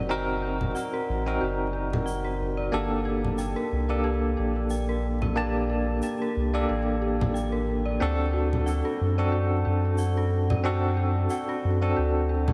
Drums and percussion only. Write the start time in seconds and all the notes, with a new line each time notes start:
0.61 low conga
0.76 shaker
1.93 low conga
2.07 shaker
3.24 low conga
3.38 shaker
4.70 shaker
5.22 low conga
6.02 shaker
7.21 low conga
7.36 shaker
8.53 low conga
8.67 shaker
9.98 shaker
10.50 low conga
11.30 shaker
12.48 low conga